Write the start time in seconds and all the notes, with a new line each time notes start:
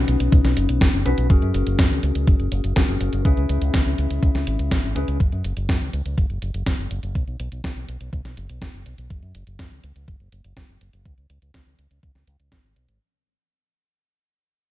Already playing: C#4 D#4 F#4 B4
0.08 B1, closed hi-hat
0.20 B1, closed hi-hat
0.32 B1, kick, closed hi-hat
0.45 B1, snare, closed hi-hat
0.57 F#1, closed hi-hat
0.69 B1, closed hi-hat
0.81 F#1, kick, snare, closed hi-hat
0.93 F#1, closed hi-hat
1.05 B1 C#4 D#4 F#4 B4, closed hi-hat
1.18 B1, closed hi-hat
1.30 F#1 C#4 F#4 G#4 A#4, kick, closed hi-hat
1.42 F#2, closed hi-hat
1.54 F#1, closed hi-hat
1.67 F#1, closed hi-hat
1.79 F#2, kick, snare, closed hi-hat
1.91 C#2, closed hi-hat
2.03 C#2, closed hi-hat
2.15 C#2, closed hi-hat
2.27 F#1, kick, closed hi-hat
2.40 F#1, closed hi-hat
2.52 F#1, closed hi-hat
2.64 F#1, closed hi-hat
2.76 C#4 F#4 G#4 A#4, kick, snare, closed hi-hat
2.88 F#1, closed hi-hat
3.01 F#1, closed hi-hat
3.13 F#1, closed hi-hat
3.25 C#2 C#4 E4 G#4 B4, kick, closed hi-hat
3.37 C#2, closed hi-hat
3.49 C#2, closed hi-hat
3.62 C#2, closed hi-hat
3.74 C#2, kick, snare, closed hi-hat
3.86 C#2, closed hi-hat
3.98 C#2, closed hi-hat
4.11 C#2, closed hi-hat
4.23 C#2, kick, closed hi-hat
4.35 C#2, snare, closed hi-hat
4.47 G#1, closed hi-hat
4.59 C#2, closed hi-hat
4.71 G#1, kick, snare, closed hi-hat
4.84 G#1, closed hi-hat
4.95 C#2 C#4 E4 G#4 B4, closed hi-hat
5.08 C#2, closed hi-hat
5.20 F#1, kick, closed hi-hat
5.32 F#2, closed hi-hat
5.44 F#1, closed hi-hat
5.57 F#1, closed hi-hat
5.69 F#2, kick, snare, closed hi-hat
5.81 C#2, closed hi-hat
5.93 C#2, closed hi-hat
6.05 C#2, closed hi-hat
6.18 F#1, kick, closed hi-hat
6.30 F#1, closed hi-hat
6.42 F#1, closed hi-hat
6.54 F#1, closed hi-hat
6.66 kick, snare, closed hi-hat
6.79 F#1, closed hi-hat
6.91 F#1, closed hi-hat
7.03 F#1, closed hi-hat
7.15 B1, kick, closed hi-hat
7.27 B1, closed hi-hat
7.40 B1, closed hi-hat
7.52 B1, closed hi-hat
7.64 B1, kick, snare, closed hi-hat
7.76 B1, closed hi-hat
7.88 B1, closed hi-hat
8.01 B1, closed hi-hat
8.13 B1, kick, closed hi-hat
8.25 B1, snare, closed hi-hat
8.37 F#1, closed hi-hat
8.49 B1, closed hi-hat
8.62 F#1, kick, snare, closed hi-hat
8.74 F#1, closed hi-hat
8.86 B1, closed hi-hat
8.98 B1, closed hi-hat
9.10 F#1, kick, closed hi-hat
9.22 F#2, closed hi-hat
9.35 F#1, closed hi-hat
9.47 F#1, closed hi-hat
9.59 F#2, kick, snare, closed hi-hat
9.71 C#2, closed hi-hat
9.84 C#2, closed hi-hat
9.96 C#2, closed hi-hat
10.08 F#1, kick, closed hi-hat
10.20 F#1, closed hi-hat
10.32 F#1, closed hi-hat
10.44 F#1, closed hi-hat
10.57 kick, snare, closed hi-hat
10.69 F#1, closed hi-hat
10.81 F#1, closed hi-hat
10.93 F#1, closed hi-hat
11.05 C#2, kick, closed hi-hat
11.18 C#2, closed hi-hat
11.30 C#2, closed hi-hat
11.42 C#2, closed hi-hat
11.54 C#2, kick, snare, closed hi-hat
11.66 C#2, closed hi-hat
11.78 C#2, closed hi-hat
11.91 C#2, closed hi-hat
12.03 C#2, kick, closed hi-hat
12.15 C#2, snare, closed hi-hat
12.27 C#2, closed hi-hat
12.40 C#2, closed hi-hat
12.52 G#1, kick, snare, closed hi-hat
12.64 G#1, closed hi-hat
12.76 B1, closed hi-hat
12.88 G#1, closed hi-hat